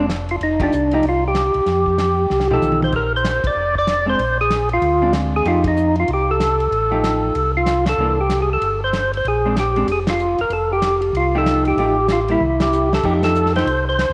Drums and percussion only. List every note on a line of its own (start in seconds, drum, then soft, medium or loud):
0.09 snare medium
0.09 hi-hat pedal medium
0.09 ride medium
0.29 ride soft
0.41 ride soft
0.60 kick medium
0.60 ride medium
0.72 hi-hat pedal medium
0.91 ride soft
1.03 ride medium
1.35 snare medium
1.35 hi-hat pedal medium
1.35 ride medium
1.54 ride soft
1.66 snare soft
1.66 ride soft
1.86 kick soft
1.98 snare medium
1.98 hi-hat pedal soft
1.98 ride medium
2.30 snare soft
2.40 snare soft
2.51 mid tom medium
2.62 hi-hat pedal soft
2.62 high tom medium
2.72 high tom medium
2.82 high tom medium
2.92 kick medium
2.92 crash medium
3.25 snare medium
3.25 hi-hat pedal medium
3.25 ride medium
3.44 kick medium
3.44 ride medium
3.75 kick soft
3.87 snare medium
3.87 hi-hat pedal medium
3.87 ride medium
4.19 ride medium
4.50 snare medium
4.50 hi-hat pedal medium
4.50 ride medium
4.69 ride soft
4.82 ride soft
5.13 snare medium
5.13 hi-hat pedal medium
5.13 ride medium
5.45 ride soft
5.64 kick medium
5.64 ride medium
5.76 hi-hat pedal medium
5.96 ride soft
6.08 ride soft
6.40 snare medium
6.40 hi-hat pedal medium
6.40 ride medium
6.60 ride soft
6.72 ride soft
7.04 snare medium
7.04 hi-hat pedal medium
7.04 ride medium
7.35 ride medium
7.66 snare medium
7.66 hi-hat pedal medium
7.66 ride medium
7.86 snare medium
7.86 ride medium
8.30 snare medium
8.30 hi-hat pedal medium
8.30 ride medium
8.62 ride medium
8.93 snare medium
8.93 hi-hat pedal soft
8.93 ride medium
9.13 ride soft
9.25 ride soft
9.56 snare medium
9.56 hi-hat pedal medium
9.56 ride medium
9.76 ride soft
9.88 ride medium
10.07 snare medium
10.07 ride medium
10.19 hi-hat pedal soft
10.38 ride soft
10.50 ride medium
10.82 snare medium
10.82 hi-hat pedal medium
10.82 ride medium
11.02 ride soft
11.15 ride medium
11.46 snare medium
11.46 hi-hat pedal medium
11.46 ride medium
11.65 ride soft
11.78 ride medium
12.08 snare medium
12.08 hi-hat pedal medium
12.08 ride medium
12.28 ride soft
12.41 high tom soft
12.60 snare medium
12.60 ride medium
12.73 hi-hat pedal medium
12.93 snare medium
13.03 kick medium
13.03 crash medium
13.23 snare medium
13.23 ride medium
13.35 hi-hat pedal medium
13.46 snare soft
13.55 snare soft
13.55 ride soft
13.67 ride medium
13.99 snare medium
13.99 hi-hat pedal medium
13.99 ride medium